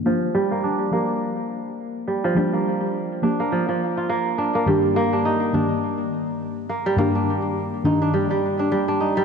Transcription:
X:1
M:4/4
L:1/16
Q:"Swing 16ths" 1/4=104
K:Gm
V:1 name="Kora"
F, z G, B, D2 B, z6 z G, F, | G, B, z4 D B, F, F, z F B,2 D B, | G, z B, D E2 D z6 z B, G, | B, D z4 E D G, G, z D G, D E G, |]
V:2 name="Synth stab"
[F,B,DG]6 [F,B,DG]2 z8 | [F,B,DG]6 [F,B,DG]2 z8 | [G,,E,B,DG]6 [G,,E,B,DG]2 z8 | [G,,E,B,DG]6 [G,,E,B,DG]2 z8 |]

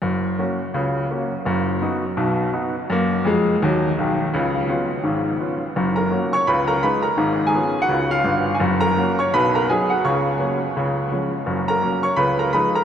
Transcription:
X:1
M:4/4
L:1/16
Q:"Swing" 1/4=168
K:F#
V:1 name="Upright piano"
z16 | z16 | z16 | z16 |
z2 [Aa]4 [cc']2 [Bb]2 [Aa]2 [Bb]2 [Aa]2- | [Aa]3 [Gg]4 [Ff]3 [Ee]4- [Ee] g | z2 [Aa]4 [cc']2 [Bb]2 [Aa]2 [Gg]2 [Ff]2 | [cc']12- [cc']2 z2 |
z2 [Aa]4 [cc']2 [Bb]2 [Aa]2 [Bb]2 [Aa]2 |]
V:2 name="Upright piano" clef=bass
[F,,,F,,]4 [A,CF]4 [C,,C,]4 [A,CF]4 | [F,,,F,,]4 [B,DF]4 [B,,,B,,]4 [B,DF]4 | [F,,A,]4 [E,,G,]4 [D,,F,]4 [B,,,D,]4 | [C,,C,]4 [B,CE]4 [G,,,G,,]4 [B,CE]4 |
[F,,,F,,]4 [A,CF]4 [C,,C,]4 [G,DE]4 | [G,,,G,,]4 [B,CE]4 [C,,C,]4 [=G,,,=G,,]4 | [F,,,F,,]4 [A,CF]4 [B,,,B,,]4 [F,B,D]4 | [C,,C,]4 [F,A,C]4 [C,,C,]4 [E,G,C]4 |
[F,,,F,,]4 [F,A,C]4 [C,,C,]4 [E,G,D]4 |]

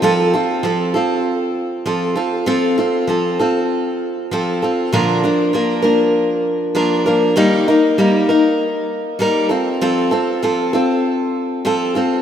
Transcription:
X:1
M:4/4
L:1/8
Q:"Swing 16ths" 1/4=98
K:Fmix
V:1 name="Steel-string acoustic guitar"
[F,CFA] [CFA] [F,CFA] [CFA]3 [F,CFA] [CFA] | [F,CFA] [CFA] [F,CFA] [CFA]3 [F,CFA] [CFA] | [B,,D,F,B,DB] [F,B,DB] [F,B,DB] [F,B,DB]3 [F,B,DB] [F,B,DB] | [E,G,B,EB] [B,EB] [G,B,EB] [B,EB]3 [G,B,EB] [CFA] |
[F,CFA] [CFA] [F,CFA] [CFA]3 [F,CFA] [CFA] |]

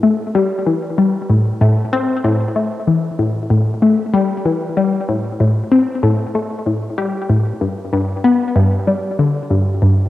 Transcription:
X:1
M:4/4
L:1/8
Q:1/4=95
K:Am
V:1 name="Synth arpeggio sound" clef=bass
A, G, E, G, A,, A,, C A,, | A, E, A,, A,, A, G, E, G, | A,, A,, C A,, A, A,, G, A,, | G,, G,, B, G,, G, D, G,, G,, |]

